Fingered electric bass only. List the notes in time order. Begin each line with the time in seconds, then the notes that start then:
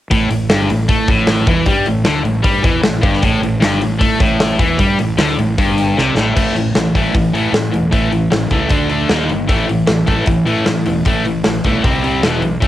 0.10 A1
0.31 A1
0.50 G1
0.70 A1
0.89 A2
1.08 A1
1.47 E2
1.66 G2
1.88 A1
2.05 D2
2.24 A1
2.44 G2
2.64 E2
2.85 A1
3.03 G1
3.23 A1
3.42 A1
3.61 G1
3.81 A1
4.01 A2
4.20 A1
4.59 E2
4.79 G2
4.99 A1
5.18 D2
5.38 A1
5.58 G1
5.98 C2
6.15 A1
6.36 A1
6.55 A1
6.75 A1
6.95 A1
7.14 A1
7.34 A2
7.52 A2
7.73 E1
7.92 A1
8.32 A1
8.50 C#2
8.71 D2
9.10 D#2
9.30 G1
9.49 A1
9.69 A1
9.88 A1
10.08 A1
10.27 A1
10.47 A2
10.68 A2
10.86 E1
11.06 A1
11.46 A1
11.64 B1
11.85 C2
12.22 E1
12.42 B1
12.62 A1